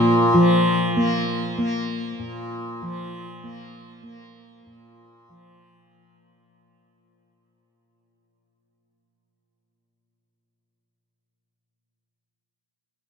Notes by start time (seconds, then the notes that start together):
Already playing: A#2 F3 A#3
0.34 F3
0.97 A#3
1.58 A#3
2.19 A#2
2.82 F3
3.43 A#3
4.03 A#3
4.67 A#2
5.29 F3